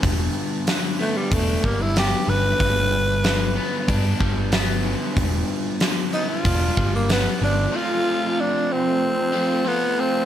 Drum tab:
HH |o-o-o-o-|o-o-o-o-|o-o-o-o-|--------|
SD |--o---o-|--o---o-|--o---o-|--------|
BD |o---oo--|o---oo--|o---oo--|--------|